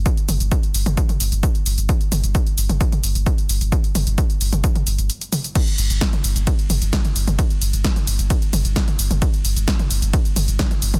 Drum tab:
CC |----------------|----------------|----------------|x---------------|
RD |----------------|----------------|----------------|x---x---x---x---|
HH |xxoxxxoxxxoxxxox|xxoxxxoxxxoxxxox|xxoxxxoxxxoxxxox|xxoxxxoxxxoxxxox|
SH |xxxxxxxxxxxxxxxx|xxxxxxxxxxxxxxxx|xxxxxxxxxxxxxxxx|xxxxxxxxxxxxxxxx|
SD |----------------|----------------|----------------|----o-------o---|
T2 |--o----o-o------|--o----o-o------|--o----o-o----o-|-----o----o-oo-o|
BD |o---o---o---o---|o---o---o---o---|o---o---o-------|o---o---o---o---|

CC |----------------|----------------|
RD |x---x---x---x---|x---x---x---x---|
HH |xxoxxxoxxxoxxxox|xxoxxxoxxxoxxxox|
SH |xxxxxxxxxxxxxxxx|xxxxxxxxxxxxxxxx|
SD |----o-------o---|----o-------o---|
T2 |-----o----o-oo-o|-----o----o-oo-o|
BD |o---o---o---o---|o---o---o---o---|